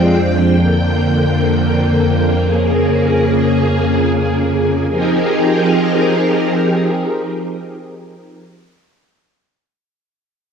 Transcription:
Already playing: F2 F3 G#3 C4 D4 G5
0.57 D3 A#3
2.46 C#3 G#4
4.90 F3 C4 D#4 G4 G#4 A#4

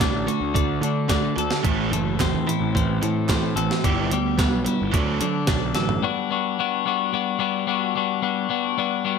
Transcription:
Already playing: C2 D3 A4
0.00 D3 A3 D4, kick, snare, closed hi-hat
0.14 A1
0.27 D3 A3 F#4, closed hi-hat
0.41 D2
0.54 D3 A3 D4, kick, closed hi-hat
0.81 D3 A3, closed hi-hat
1.08 D3 A3 D4, kick, snare, clap, closed hi-hat
1.36 D2 D3 A3 A4, closed hi-hat
1.51 snare
1.63 A1 A2 E3 A3, kick, closed hi-hat
1.91 F#1 A2 E3 A3, closed hi-hat
2.19 A2 E3 C4, kick, snare, clap, closed hi-hat
2.33 E2
2.47 A2 E3 E4, closed hi-hat
2.60 A1
2.75 A2 E3 C4, kick, closed hi-hat
3.01 A2 E3 A3, closed hi-hat
3.29 A2 E3 C4, kick, snare, clap, closed hi-hat
3.56 A1 A2 E3 A4, closed hi-hat
3.71 snare
3.84 G1 G3 B3 E4, kick, closed hi-hat
4.11 D2 G3 B3, closed hi-hat
4.38 G3 B3, kick, snare, clap, closed hi-hat
4.53 B1
4.64 G3 B3 E4, closed hi-hat
4.82 G1
4.91 D2 D3 F#3 A3, kick, closed hi-hat
5.21 D3 F#3, clap, closed hi-hat
5.47 B1 D3 F#3 D4, kick, snare, clap, closed hi-hat
5.75 A1 D3 F#3 A4, snare, closed hi-hat
5.89 floor tom
6.03 G3 B3 D4 F#4
6.31 G3 B3 D4 F#4
6.59 G3 B3 D4 F#4
6.86 G3 B3 D4 F#4
7.13 G3 B3 D4 F#4
7.39 G3 B3 D4 F#4
7.67 G3 B3 D4 F#4
7.95 G3 B3 D4 F#4
8.22 G3 B3 D4 F#4
8.49 G3 B3 D4 F#4
8.78 G3 B3 D4 F#4
9.04 G3 B3 D4 F#4

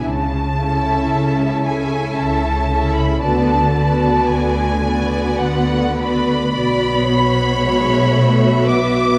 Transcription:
0.04 C#2 C#3 A5
0.57 C#4 E4 A4 E5
1.11 C#2 C#3
1.64 C#4 E4 A4 E5 G#5
2.17 C#2 C#3 A5
2.71 C#4 E4 A4 E5
2.95 B5
3.20 D2 D3 B3 F#4 B4 D5 A5
3.75 B3 F#4 B4 D5
4.28 D2 D3 G#5
4.83 B3 F#4 B4 D5
5.38 D2 D3 F#5
5.98 B3 F#4 B4 D5 B5
6.53 B1 B2 B3 F#4 D5
7.08 C#5
7.61 G#3 E5
8.14 A3
8.68 B3 B4 D6

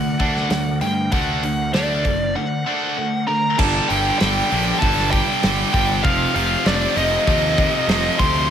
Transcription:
Already playing: D2 D3 A3 D4 A#4 D5 F#5
0.20 D3 A3 D4, kick, open hi-hat
0.36 snare
0.50 D2 D3 A3, snare, open hi-hat
0.81 G2 D3 A3 C5 G5, open hi-hat
1.12 D2 D3 A3 D4 F#5, kick, open hi-hat
1.43 D3 A3, open hi-hat
1.74 D2 D3 A3 D4 D5, snare, open hi-hat
2.05 F#1 D3 A3, kick, open hi-hat
2.36 D3 A3 F#5
2.66 D3 A3 D4
2.97 D3 A3
3.27 D3 A3 A#4 A#5
3.56 G1 G2 D3 G3 D4 A4 A5, kick, crash
3.88 G1 G2 D3 G3 G4 G5, open hi-hat
4.18 G1 G2 D3 G3 G4 G5, snare, open hi-hat
4.51 A#1 G2 D3 G3, open hi-hat
4.79 G1 G2 D3 G3 A4 A5, kick, open hi-hat
4.99 snare
5.11 G2 D3 G3 G4 G5, kick, open hi-hat
5.42 G1 G2 D3 G3, snare, open hi-hat
5.73 G1 G2 D3 G3 G4 G5, kick, open hi-hat
6.02 F1 F2 C3 F3 C4 F4 G4 F5, kick, open hi-hat
6.34 F1 F2 C3 F3 F4 F5, open hi-hat
6.65 F1 F2 C3 F3 D4 D5, snare, open hi-hat
6.95 F1 F2 C3 F3 D#4 D#5, open hi-hat
7.26 D#2 F2 C3 F3, kick, open hi-hat
7.57 F2 C3 F3, kick, open hi-hat
7.88 F1 F2 C3 F3, snare, open hi-hat
8.19 D2 F2 C3 F3 C5 C6, kick, open hi-hat

